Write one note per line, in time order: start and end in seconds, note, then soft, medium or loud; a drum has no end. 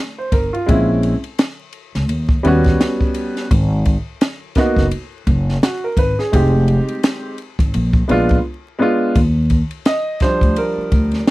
0.18 0.33 C5 medium
0.32 0.49 G1 medium
0.32 0.53 A#4 medium
0.32 kick medium
0.32 ride medium
0.53 0.87 F4 medium
0.53 ride soft
0.66 1.13 A#1 loud
0.66 1.11 G#3 medium
0.66 1.12 C4 medium
0.66 1.12 C#4 medium
0.66 1.13 E4 medium
0.66 kick loud
0.66 ride medium
1.03 ride medium
1.24 ride soft
1.39 snare loud
1.39 hi-hat pedal medium
1.39 ride medium
1.73 ride medium
1.95 2.09 C#2 medium
1.95 snare soft
1.95 ride soft
2.09 2.37 D#2 medium
2.09 ride medium
2.29 kick medium
2.43 2.73 D#2 loud
2.43 3.44 G3 medium
2.43 3.45 B3 medium
2.43 3.45 C#4 medium
2.43 3.46 F#4 medium
2.43 ride medium
2.64 kick medium
2.64 snare soft
2.64 ride soft
2.81 snare medium
2.81 hi-hat pedal soft
2.81 ride medium
3.01 kick medium
3.14 ride medium
3.37 snare soft
3.37 ride soft
3.51 3.95 G#1 loud
3.51 kick loud
3.51 ride medium
3.85 kick medium
3.85 ride medium
4.21 snare loud
4.21 hi-hat pedal medium
4.21 ride medium
4.55 4.83 A#3 medium
4.55 4.83 B3 medium
4.55 4.84 D#4 medium
4.55 4.85 F#4 medium
4.55 kick medium
4.55 snare soft
4.55 ride medium
4.76 4.89 F#1 medium
4.76 kick medium
4.76 snare soft
4.91 ride medium
5.27 5.55 F#1 loud
5.27 kick medium
5.27 ride medium
5.49 snare soft
5.63 5.82 F#4 medium
5.63 snare loud
5.63 hi-hat pedal medium
5.63 ride medium
5.84 5.98 A#4 medium
5.97 6.14 G#1 medium
5.97 6.18 B4 medium
5.97 kick medium
5.97 ride medium
6.19 6.52 G#4 medium
6.19 snare soft
6.32 6.77 F1 loud
6.32 7.33 G#3 medium
6.32 7.33 C4 medium
6.32 7.34 D#4 medium
6.32 7.34 G4 medium
6.32 kick loud
6.32 ride medium
6.68 ride medium
6.88 ride soft
7.03 snare loud
7.03 hi-hat pedal medium
7.03 ride medium
7.38 ride medium
7.59 7.71 G#1 medium
7.59 kick medium
7.59 ride soft
7.74 8.02 A#1 medium
7.74 ride medium
7.93 kick medium
8.08 8.38 A#1 medium
8.08 8.35 G#3 medium
8.08 8.36 B3 medium
8.08 8.37 D4 medium
8.08 8.37 F4 medium
8.08 ride medium
8.29 kick medium
8.29 ride soft
8.79 9.15 G#3 medium
8.79 9.15 B3 medium
8.79 9.16 D4 medium
8.79 9.17 F4 loud
9.15 9.60 D#2 loud
9.15 kick loud
9.15 ride medium
9.50 kick medium
9.50 ride soft
9.71 ride soft
9.85 10.23 D#5 loud
9.85 snare loud
9.85 hi-hat pedal medium
9.85 ride medium
10.20 11.23 F3 medium
10.20 11.24 G3 soft
10.20 11.24 D4 medium
10.20 10.58 C5 medium
10.20 kick medium
10.20 snare soft
10.20 ride medium
10.41 10.53 D2 medium
10.41 kick medium
10.41 ride soft
10.56 11.31 A#4 medium
10.56 ride medium
10.77 muted upright bass stroke soft
10.92 11.20 D2 medium
10.92 kick medium
10.92 ride medium
11.11 snare soft
11.11 ride soft
11.27 snare loud
11.27 hi-hat pedal medium
11.27 ride medium